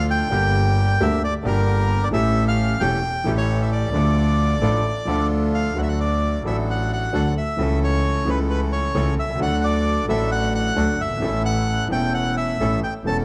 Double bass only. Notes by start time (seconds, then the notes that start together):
Already playing: D2
0.32 G1
1.00 D2
1.44 G1
2.13 A1
2.80 E1
3.25 A1
3.92 D2
4.60 A1
5.06 D2
5.76 D2
6.46 A1
7.14 D2
7.60 C#2
8.27 C#2
8.95 C#2
9.18 C2
9.41 D2
10.08 A1
10.77 D2
10.99 G1
11.22 A1
11.90 E1
12.59 A1
13.05 E1